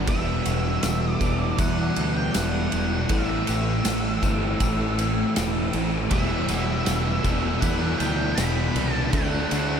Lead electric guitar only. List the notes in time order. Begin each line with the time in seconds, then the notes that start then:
0.09 E5
1.12 D5
1.60 F#5
2.17 G5
2.35 F#5
3.10 E5
6.12 E5
7.61 F#5
7.98 G5
8.35 B5
8.93 A5
9.10 F#5